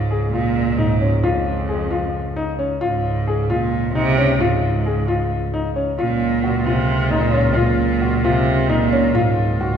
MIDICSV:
0, 0, Header, 1, 5, 480
1, 0, Start_track
1, 0, Key_signature, -5, "major"
1, 0, Tempo, 452489
1, 1315, Time_signature, 7, 3, 24, 8
1, 10364, End_track
2, 0, Start_track
2, 0, Title_t, "Grand piano"
2, 0, Program_c, 0, 0
2, 113, Note_on_c, 0, 68, 65
2, 263, Note_off_c, 0, 68, 0
2, 353, Note_on_c, 0, 65, 74
2, 654, Note_off_c, 0, 65, 0
2, 833, Note_on_c, 0, 63, 77
2, 984, Note_off_c, 0, 63, 0
2, 1070, Note_on_c, 0, 61, 77
2, 1222, Note_off_c, 0, 61, 0
2, 1310, Note_on_c, 0, 65, 93
2, 1612, Note_off_c, 0, 65, 0
2, 1789, Note_on_c, 0, 68, 65
2, 1941, Note_off_c, 0, 68, 0
2, 2024, Note_on_c, 0, 65, 81
2, 2328, Note_off_c, 0, 65, 0
2, 2508, Note_on_c, 0, 63, 81
2, 2661, Note_off_c, 0, 63, 0
2, 2744, Note_on_c, 0, 61, 83
2, 2898, Note_off_c, 0, 61, 0
2, 2981, Note_on_c, 0, 65, 89
2, 3286, Note_off_c, 0, 65, 0
2, 3473, Note_on_c, 0, 68, 70
2, 3624, Note_off_c, 0, 68, 0
2, 3711, Note_on_c, 0, 65, 91
2, 4013, Note_off_c, 0, 65, 0
2, 4193, Note_on_c, 0, 63, 83
2, 4344, Note_off_c, 0, 63, 0
2, 4434, Note_on_c, 0, 61, 93
2, 4585, Note_off_c, 0, 61, 0
2, 4673, Note_on_c, 0, 65, 97
2, 4974, Note_off_c, 0, 65, 0
2, 5154, Note_on_c, 0, 68, 65
2, 5305, Note_off_c, 0, 68, 0
2, 5391, Note_on_c, 0, 65, 88
2, 5692, Note_off_c, 0, 65, 0
2, 5873, Note_on_c, 0, 63, 80
2, 6024, Note_off_c, 0, 63, 0
2, 6109, Note_on_c, 0, 61, 82
2, 6261, Note_off_c, 0, 61, 0
2, 6350, Note_on_c, 0, 65, 85
2, 6651, Note_off_c, 0, 65, 0
2, 6828, Note_on_c, 0, 66, 73
2, 6980, Note_off_c, 0, 66, 0
2, 7069, Note_on_c, 0, 65, 85
2, 7370, Note_off_c, 0, 65, 0
2, 7542, Note_on_c, 0, 63, 84
2, 7696, Note_off_c, 0, 63, 0
2, 7783, Note_on_c, 0, 61, 89
2, 7937, Note_off_c, 0, 61, 0
2, 8024, Note_on_c, 0, 65, 88
2, 8327, Note_off_c, 0, 65, 0
2, 8505, Note_on_c, 0, 66, 69
2, 8658, Note_off_c, 0, 66, 0
2, 8746, Note_on_c, 0, 65, 91
2, 9048, Note_off_c, 0, 65, 0
2, 9225, Note_on_c, 0, 63, 89
2, 9378, Note_off_c, 0, 63, 0
2, 9467, Note_on_c, 0, 61, 94
2, 9619, Note_off_c, 0, 61, 0
2, 9704, Note_on_c, 0, 65, 95
2, 10007, Note_off_c, 0, 65, 0
2, 10191, Note_on_c, 0, 66, 78
2, 10342, Note_off_c, 0, 66, 0
2, 10364, End_track
3, 0, Start_track
3, 0, Title_t, "Woodwind section"
3, 0, Program_c, 1, 71
3, 6359, Note_on_c, 1, 51, 60
3, 6361, Note_on_c, 1, 65, 71
3, 6364, Note_on_c, 1, 54, 65
3, 9683, Note_off_c, 1, 65, 0
3, 9727, Note_on_c, 1, 65, 66
3, 10364, Note_off_c, 1, 51, 0
3, 10364, Note_off_c, 1, 54, 0
3, 10364, Note_off_c, 1, 65, 0
3, 10364, End_track
4, 0, Start_track
4, 0, Title_t, "Cello"
4, 0, Program_c, 2, 42
4, 0, Note_on_c, 2, 44, 96
4, 309, Note_off_c, 2, 44, 0
4, 346, Note_on_c, 2, 46, 100
4, 821, Note_on_c, 2, 44, 100
4, 837, Note_off_c, 2, 46, 0
4, 1295, Note_on_c, 2, 41, 84
4, 1311, Note_off_c, 2, 44, 0
4, 2747, Note_off_c, 2, 41, 0
4, 2991, Note_on_c, 2, 44, 91
4, 3699, Note_on_c, 2, 46, 96
4, 3715, Note_off_c, 2, 44, 0
4, 4168, Note_off_c, 2, 46, 0
4, 4175, Note_on_c, 2, 48, 119
4, 4650, Note_on_c, 2, 44, 95
4, 4666, Note_off_c, 2, 48, 0
4, 6103, Note_off_c, 2, 44, 0
4, 6339, Note_on_c, 2, 46, 104
4, 7057, Note_on_c, 2, 48, 107
4, 7073, Note_off_c, 2, 46, 0
4, 7536, Note_on_c, 2, 46, 118
4, 7552, Note_off_c, 2, 48, 0
4, 7952, Note_off_c, 2, 46, 0
4, 7963, Note_on_c, 2, 48, 88
4, 8017, Note_on_c, 2, 46, 109
4, 8033, Note_off_c, 2, 48, 0
4, 8741, Note_on_c, 2, 48, 107
4, 8757, Note_off_c, 2, 46, 0
4, 9223, Note_on_c, 2, 46, 113
4, 9239, Note_off_c, 2, 48, 0
4, 9688, Note_on_c, 2, 44, 98
4, 9704, Note_off_c, 2, 46, 0
4, 10169, Note_off_c, 2, 44, 0
4, 10175, Note_on_c, 2, 44, 85
4, 10287, Note_off_c, 2, 44, 0
4, 10364, End_track
5, 0, Start_track
5, 0, Title_t, "Double bass"
5, 0, Program_c, 3, 43
5, 0, Note_on_c, 3, 37, 83
5, 2987, Note_off_c, 3, 37, 0
5, 2987, Note_on_c, 3, 37, 80
5, 6359, Note_off_c, 3, 37, 0
5, 6359, Note_on_c, 3, 37, 83
5, 9723, Note_off_c, 3, 37, 0
5, 9723, Note_on_c, 3, 37, 88
5, 10364, Note_off_c, 3, 37, 0
5, 10364, End_track
0, 0, End_of_file